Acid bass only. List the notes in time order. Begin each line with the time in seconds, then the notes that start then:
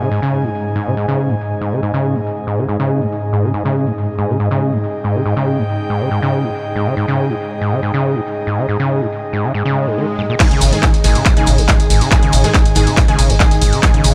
0.01 C#3
0.11 G#2
0.22 C#3
0.44 G#2
0.76 G#2
0.87 C#3
0.97 G#2
1.08 C#3
1.30 G#2
1.61 G#2
1.72 C#3
1.83 G#2
1.94 C#3
2.15 G#2
2.47 G#2
2.58 C#3
2.69 G#2
2.80 C#3
3.01 G#2
3.33 G#2
3.44 C#3
3.54 G#2
3.65 C#3
3.87 G#2
4.19 G#2
4.30 C#3
4.40 G#2
4.51 C#3
4.72 G#2
5.04 G#2
5.15 C#3
5.26 G#2
5.37 C#3
5.58 G#2
5.90 G#2
6.01 C#3
6.11 G#2
6.22 C#3
6.44 G#2
6.76 G#2
6.87 C#3
6.97 G#2
7.08 C#3
7.30 G#2
7.61 G#2
7.72 C#3
7.83 G#2
7.94 C#3
8.15 G#2
8.47 G#2
8.58 C#3
8.69 G#2
8.80 C#3
9.01 G#2
9.33 G#2
9.44 C#3
9.54 G#2
9.65 C#3
9.87 G#2
9.97 D#3
10.18 G#2
10.30 A#2
10.40 G#2
10.51 C#3
10.72 G#2
11.04 G#2
11.15 C#3
11.26 G#2
11.37 C#3
11.58 G#2
11.90 G#2
12.01 C#3
12.11 G#2
12.22 C#3
12.44 G#2
12.76 G#2
12.87 C#3
12.97 G#2
13.08 C#3
13.30 G#2
13.61 G#2
13.73 C#3
13.83 G#2
13.94 C#3